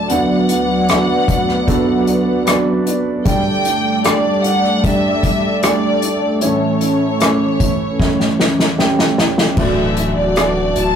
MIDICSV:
0, 0, Header, 1, 7, 480
1, 0, Start_track
1, 0, Key_signature, 2, "major"
1, 0, Tempo, 789474
1, 61, Time_signature, 4, 2, 24, 8
1, 6662, End_track
2, 0, Start_track
2, 0, Title_t, "Violin section"
2, 0, Program_c, 0, 48
2, 0, Note_on_c, 0, 81, 77
2, 60, Note_on_c, 0, 78, 67
2, 62, Note_off_c, 0, 81, 0
2, 1501, Note_off_c, 0, 78, 0
2, 1994, Note_on_c, 0, 79, 84
2, 2443, Note_off_c, 0, 79, 0
2, 2477, Note_on_c, 0, 74, 76
2, 2709, Note_off_c, 0, 74, 0
2, 2710, Note_on_c, 0, 78, 78
2, 2946, Note_off_c, 0, 78, 0
2, 2949, Note_on_c, 0, 76, 76
2, 3425, Note_off_c, 0, 76, 0
2, 3436, Note_on_c, 0, 74, 73
2, 3884, Note_off_c, 0, 74, 0
2, 3919, Note_on_c, 0, 73, 59
2, 5326, Note_off_c, 0, 73, 0
2, 5828, Note_on_c, 0, 76, 69
2, 6160, Note_off_c, 0, 76, 0
2, 6188, Note_on_c, 0, 74, 73
2, 6545, Note_off_c, 0, 74, 0
2, 6552, Note_on_c, 0, 81, 84
2, 6662, Note_off_c, 0, 81, 0
2, 6662, End_track
3, 0, Start_track
3, 0, Title_t, "Analog synth pad"
3, 0, Program_c, 1, 89
3, 0, Note_on_c, 1, 54, 70
3, 0, Note_on_c, 1, 74, 77
3, 50, Note_on_c, 1, 62, 68
3, 51, Note_on_c, 1, 38, 70
3, 53, Note_on_c, 1, 59, 64
3, 55, Note_on_c, 1, 71, 67
3, 1957, Note_off_c, 1, 38, 0
3, 1957, Note_off_c, 1, 74, 0
3, 1958, Note_off_c, 1, 54, 0
3, 1958, Note_off_c, 1, 59, 0
3, 1959, Note_off_c, 1, 71, 0
3, 1986, Note_on_c, 1, 69, 70
3, 1987, Note_on_c, 1, 55, 70
3, 1988, Note_on_c, 1, 74, 79
3, 1989, Note_on_c, 1, 57, 65
3, 3872, Note_off_c, 1, 62, 0
3, 3885, Note_off_c, 1, 55, 0
3, 3885, Note_off_c, 1, 74, 0
3, 3901, Note_on_c, 1, 73, 82
3, 3903, Note_on_c, 1, 52, 72
3, 3904, Note_on_c, 1, 61, 65
3, 5799, Note_off_c, 1, 69, 0
3, 5801, Note_off_c, 1, 57, 0
3, 5802, Note_off_c, 1, 73, 0
3, 5803, Note_off_c, 1, 52, 0
3, 5804, Note_off_c, 1, 61, 0
3, 5817, Note_on_c, 1, 62, 66
3, 5817, Note_on_c, 1, 76, 63
3, 5820, Note_on_c, 1, 81, 76
3, 5821, Note_on_c, 1, 66, 69
3, 6662, Note_off_c, 1, 62, 0
3, 6662, Note_off_c, 1, 66, 0
3, 6662, Note_off_c, 1, 76, 0
3, 6662, Note_off_c, 1, 81, 0
3, 6662, End_track
4, 0, Start_track
4, 0, Title_t, "Grand piano"
4, 0, Program_c, 2, 0
4, 0, Control_c, 2, 64, 127
4, 0, Note_on_c, 2, 57, 51
4, 0, Note_on_c, 2, 62, 48
4, 0, Note_on_c, 2, 66, 49
4, 0, Note_on_c, 2, 74, 59
4, 0, Note_on_c, 2, 76, 60
4, 58, Note_on_c, 2, 59, 54
4, 62, Note_off_c, 2, 62, 0
4, 62, Note_on_c, 2, 38, 44
4, 62, Note_on_c, 2, 62, 49
4, 63, Note_on_c, 2, 50, 49
4, 64, Note_off_c, 2, 66, 0
4, 64, Note_on_c, 2, 66, 49
4, 67, Note_off_c, 2, 74, 0
4, 67, Note_on_c, 2, 74, 60
4, 69, Control_c, 2, 64, 0
4, 72, Note_off_c, 2, 76, 0
4, 74, Note_off_c, 2, 57, 0
4, 169, Control_c, 2, 64, 127
4, 516, Note_off_c, 2, 59, 0
4, 517, Note_off_c, 2, 62, 0
4, 519, Note_off_c, 2, 66, 0
4, 520, Note_off_c, 2, 74, 0
4, 539, Note_on_c, 2, 59, 59
4, 542, Note_on_c, 2, 62, 53
4, 545, Note_on_c, 2, 66, 55
4, 546, Note_on_c, 2, 76, 66
4, 996, Note_off_c, 2, 59, 0
4, 998, Note_off_c, 2, 62, 0
4, 999, Note_off_c, 2, 66, 0
4, 1000, Note_off_c, 2, 76, 0
4, 1015, Note_on_c, 2, 59, 70
4, 1017, Note_on_c, 2, 62, 63
4, 1021, Note_on_c, 2, 66, 63
4, 1023, Note_on_c, 2, 69, 73
4, 1474, Note_off_c, 2, 59, 0
4, 1475, Note_off_c, 2, 62, 0
4, 1477, Note_off_c, 2, 66, 0
4, 1478, Note_off_c, 2, 69, 0
4, 1494, Note_on_c, 2, 59, 68
4, 1496, Note_on_c, 2, 62, 63
4, 1501, Note_on_c, 2, 66, 62
4, 1501, Note_on_c, 2, 74, 77
4, 1954, Note_off_c, 2, 59, 0
4, 1955, Note_off_c, 2, 62, 0
4, 1957, Note_off_c, 2, 66, 0
4, 1957, Note_off_c, 2, 74, 0
4, 1958, Note_off_c, 2, 38, 0
4, 1958, Note_off_c, 2, 50, 0
4, 1974, Note_on_c, 2, 57, 56
4, 1978, Note_on_c, 2, 62, 53
4, 1979, Note_on_c, 2, 43, 47
4, 1979, Note_on_c, 2, 50, 49
4, 1979, Note_on_c, 2, 67, 55
4, 1981, Note_on_c, 2, 74, 62
4, 1990, Control_c, 2, 64, 0
4, 2110, Control_c, 2, 64, 127
4, 2434, Note_off_c, 2, 57, 0
4, 2436, Note_off_c, 2, 62, 0
4, 2436, Note_off_c, 2, 67, 0
4, 2437, Note_off_c, 2, 74, 0
4, 2458, Note_on_c, 2, 57, 65
4, 2460, Note_on_c, 2, 62, 57
4, 2464, Note_on_c, 2, 67, 57
4, 2466, Note_on_c, 2, 74, 65
4, 2916, Note_off_c, 2, 57, 0
4, 2917, Note_off_c, 2, 62, 0
4, 2919, Note_off_c, 2, 67, 0
4, 2920, Note_off_c, 2, 74, 0
4, 2940, Note_on_c, 2, 57, 58
4, 2942, Note_on_c, 2, 62, 54
4, 2943, Note_on_c, 2, 67, 53
4, 2947, Note_on_c, 2, 74, 65
4, 3397, Note_off_c, 2, 57, 0
4, 3398, Note_off_c, 2, 62, 0
4, 3398, Note_off_c, 2, 67, 0
4, 3400, Note_off_c, 2, 74, 0
4, 3418, Note_on_c, 2, 57, 59
4, 3422, Note_on_c, 2, 62, 53
4, 3423, Note_on_c, 2, 67, 49
4, 3426, Note_on_c, 2, 74, 61
4, 3876, Note_off_c, 2, 43, 0
4, 3876, Note_off_c, 2, 50, 0
4, 3876, Note_off_c, 2, 57, 0
4, 3878, Note_off_c, 2, 62, 0
4, 3878, Note_off_c, 2, 67, 0
4, 3880, Note_off_c, 2, 74, 0
4, 3900, Note_on_c, 2, 57, 57
4, 3901, Note_on_c, 2, 61, 50
4, 3902, Note_on_c, 2, 45, 44
4, 3904, Note_on_c, 2, 52, 47
4, 3905, Note_on_c, 2, 64, 49
4, 3906, Note_on_c, 2, 73, 62
4, 3908, Control_c, 2, 64, 0
4, 4019, Control_c, 2, 64, 127
4, 4357, Note_off_c, 2, 57, 0
4, 4357, Note_off_c, 2, 61, 0
4, 4359, Note_off_c, 2, 64, 0
4, 4360, Note_off_c, 2, 73, 0
4, 4379, Note_on_c, 2, 57, 60
4, 4382, Note_on_c, 2, 61, 54
4, 4385, Note_on_c, 2, 64, 57
4, 4388, Note_on_c, 2, 76, 68
4, 4836, Note_off_c, 2, 57, 0
4, 4838, Note_off_c, 2, 61, 0
4, 4839, Note_off_c, 2, 64, 0
4, 4841, Note_off_c, 2, 76, 0
4, 4860, Note_on_c, 2, 57, 67
4, 4861, Note_on_c, 2, 61, 59
4, 4864, Note_on_c, 2, 64, 61
4, 4867, Note_on_c, 2, 73, 68
4, 5317, Note_off_c, 2, 57, 0
4, 5317, Note_off_c, 2, 61, 0
4, 5319, Note_off_c, 2, 64, 0
4, 5320, Note_off_c, 2, 73, 0
4, 5338, Note_on_c, 2, 57, 63
4, 5341, Note_on_c, 2, 61, 62
4, 5343, Note_on_c, 2, 64, 59
4, 5345, Note_on_c, 2, 67, 70
4, 5796, Note_off_c, 2, 57, 0
4, 5797, Note_off_c, 2, 45, 0
4, 5797, Note_off_c, 2, 61, 0
4, 5798, Note_off_c, 2, 52, 0
4, 5798, Note_off_c, 2, 64, 0
4, 5799, Note_off_c, 2, 67, 0
4, 5819, Note_on_c, 2, 57, 67
4, 5823, Note_on_c, 2, 45, 43
4, 5823, Note_on_c, 2, 64, 63
4, 5824, Note_on_c, 2, 66, 60
4, 5828, Note_on_c, 2, 74, 75
4, 5829, Control_c, 2, 64, 0
4, 5924, Control_c, 2, 64, 127
4, 6276, Note_off_c, 2, 57, 0
4, 6278, Note_off_c, 2, 64, 0
4, 6279, Note_off_c, 2, 66, 0
4, 6281, Note_off_c, 2, 74, 0
4, 6301, Note_on_c, 2, 57, 57
4, 6303, Note_on_c, 2, 64, 52
4, 6306, Note_on_c, 2, 66, 55
4, 6307, Note_on_c, 2, 74, 60
4, 6518, Note_off_c, 2, 45, 0
4, 6662, Note_off_c, 2, 57, 0
4, 6662, Note_off_c, 2, 64, 0
4, 6662, Note_off_c, 2, 66, 0
4, 6662, Note_off_c, 2, 74, 0
4, 6662, End_track
5, 0, Start_track
5, 0, Title_t, "Steel-string acoustic guitar"
5, 0, Program_c, 3, 25
5, 5820, Note_on_c, 3, 50, 58
5, 5821, Note_on_c, 3, 52, 56
5, 5824, Note_on_c, 3, 57, 56
5, 5826, Note_on_c, 3, 62, 67
5, 5827, Note_on_c, 3, 66, 59
5, 6289, Note_off_c, 3, 52, 0
5, 6294, Note_off_c, 3, 57, 0
5, 6296, Note_on_c, 3, 52, 39
5, 6301, Note_off_c, 3, 66, 0
5, 6301, Note_on_c, 3, 57, 41
5, 6303, Note_off_c, 3, 62, 0
5, 6305, Note_on_c, 3, 62, 44
5, 6309, Note_on_c, 3, 66, 44
5, 6315, Note_off_c, 3, 50, 0
5, 6662, Note_off_c, 3, 52, 0
5, 6662, Note_off_c, 3, 57, 0
5, 6662, Note_off_c, 3, 62, 0
5, 6662, Note_off_c, 3, 66, 0
5, 6662, End_track
6, 0, Start_track
6, 0, Title_t, "Sub bass"
6, 0, Program_c, 4, 38
6, 5818, Note_on_c, 4, 26, 92
6, 6155, Note_off_c, 4, 26, 0
6, 6182, Note_on_c, 4, 26, 81
6, 6517, Note_off_c, 4, 26, 0
6, 6537, Note_on_c, 4, 26, 85
6, 6662, Note_off_c, 4, 26, 0
6, 6662, End_track
7, 0, Start_track
7, 0, Title_t, "Drums"
7, 58, Note_on_c, 9, 42, 65
7, 119, Note_off_c, 9, 42, 0
7, 297, Note_on_c, 9, 42, 59
7, 357, Note_off_c, 9, 42, 0
7, 538, Note_on_c, 9, 42, 60
7, 545, Note_on_c, 9, 37, 83
7, 599, Note_off_c, 9, 42, 0
7, 606, Note_off_c, 9, 37, 0
7, 779, Note_on_c, 9, 36, 61
7, 780, Note_on_c, 9, 42, 51
7, 840, Note_off_c, 9, 36, 0
7, 841, Note_off_c, 9, 42, 0
7, 905, Note_on_c, 9, 37, 27
7, 965, Note_off_c, 9, 37, 0
7, 1020, Note_on_c, 9, 36, 72
7, 1021, Note_on_c, 9, 42, 60
7, 1081, Note_off_c, 9, 36, 0
7, 1082, Note_off_c, 9, 42, 0
7, 1260, Note_on_c, 9, 42, 58
7, 1321, Note_off_c, 9, 42, 0
7, 1500, Note_on_c, 9, 42, 70
7, 1506, Note_on_c, 9, 37, 83
7, 1561, Note_off_c, 9, 42, 0
7, 1567, Note_off_c, 9, 37, 0
7, 1743, Note_on_c, 9, 42, 61
7, 1804, Note_off_c, 9, 42, 0
7, 1979, Note_on_c, 9, 42, 65
7, 1980, Note_on_c, 9, 36, 86
7, 2040, Note_off_c, 9, 42, 0
7, 2041, Note_off_c, 9, 36, 0
7, 2218, Note_on_c, 9, 42, 58
7, 2279, Note_off_c, 9, 42, 0
7, 2458, Note_on_c, 9, 42, 64
7, 2466, Note_on_c, 9, 37, 91
7, 2519, Note_off_c, 9, 42, 0
7, 2527, Note_off_c, 9, 37, 0
7, 2701, Note_on_c, 9, 42, 51
7, 2762, Note_off_c, 9, 42, 0
7, 2824, Note_on_c, 9, 37, 25
7, 2885, Note_off_c, 9, 37, 0
7, 2941, Note_on_c, 9, 36, 74
7, 2941, Note_on_c, 9, 42, 60
7, 3002, Note_off_c, 9, 36, 0
7, 3002, Note_off_c, 9, 42, 0
7, 3181, Note_on_c, 9, 36, 64
7, 3181, Note_on_c, 9, 42, 53
7, 3242, Note_off_c, 9, 36, 0
7, 3242, Note_off_c, 9, 42, 0
7, 3421, Note_on_c, 9, 42, 66
7, 3427, Note_on_c, 9, 37, 85
7, 3482, Note_off_c, 9, 42, 0
7, 3488, Note_off_c, 9, 37, 0
7, 3661, Note_on_c, 9, 42, 63
7, 3722, Note_off_c, 9, 42, 0
7, 3898, Note_on_c, 9, 42, 66
7, 3959, Note_off_c, 9, 42, 0
7, 4140, Note_on_c, 9, 42, 60
7, 4201, Note_off_c, 9, 42, 0
7, 4380, Note_on_c, 9, 42, 61
7, 4388, Note_on_c, 9, 37, 85
7, 4441, Note_off_c, 9, 42, 0
7, 4449, Note_off_c, 9, 37, 0
7, 4621, Note_on_c, 9, 36, 64
7, 4621, Note_on_c, 9, 42, 53
7, 4682, Note_off_c, 9, 36, 0
7, 4682, Note_off_c, 9, 42, 0
7, 4861, Note_on_c, 9, 36, 72
7, 4865, Note_on_c, 9, 38, 40
7, 4922, Note_off_c, 9, 36, 0
7, 4926, Note_off_c, 9, 38, 0
7, 4986, Note_on_c, 9, 38, 41
7, 5047, Note_off_c, 9, 38, 0
7, 5105, Note_on_c, 9, 38, 50
7, 5165, Note_off_c, 9, 38, 0
7, 5224, Note_on_c, 9, 38, 47
7, 5285, Note_off_c, 9, 38, 0
7, 5344, Note_on_c, 9, 38, 58
7, 5405, Note_off_c, 9, 38, 0
7, 5465, Note_on_c, 9, 38, 57
7, 5526, Note_off_c, 9, 38, 0
7, 5583, Note_on_c, 9, 38, 75
7, 5644, Note_off_c, 9, 38, 0
7, 5703, Note_on_c, 9, 38, 66
7, 5764, Note_off_c, 9, 38, 0
7, 5817, Note_on_c, 9, 49, 69
7, 5820, Note_on_c, 9, 36, 89
7, 5878, Note_off_c, 9, 49, 0
7, 5880, Note_off_c, 9, 36, 0
7, 6059, Note_on_c, 9, 42, 58
7, 6120, Note_off_c, 9, 42, 0
7, 6298, Note_on_c, 9, 42, 56
7, 6306, Note_on_c, 9, 37, 87
7, 6359, Note_off_c, 9, 42, 0
7, 6367, Note_off_c, 9, 37, 0
7, 6540, Note_on_c, 9, 42, 52
7, 6601, Note_off_c, 9, 42, 0
7, 6662, End_track
0, 0, End_of_file